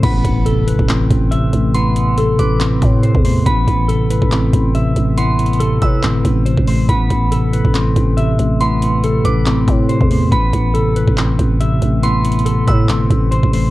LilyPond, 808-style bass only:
\new Staff \with { instrumentName = "808-style bass" } { \clef bass \time 4/4 \key a \minor \tempo 4 = 140 a,,8 a,,4~ a,,16 a,,8. a,,4 a,,8~ | a,,4. a,,4 a,8. e,8. | a,,8 a,,4~ a,,16 a,,8. a,,4 a,,8~ | a,,4. a,8 g,,8 a,,8. a,,8. |
a,,8 a,,4~ a,,16 a,,8. a,,4 a,,8~ | a,,4. a,,4 a,8. e,8. | a,,8 a,,4~ a,,16 a,,8. a,,4 a,,8~ | a,,4. a,8 g,,8 a,,8. a,,8. | }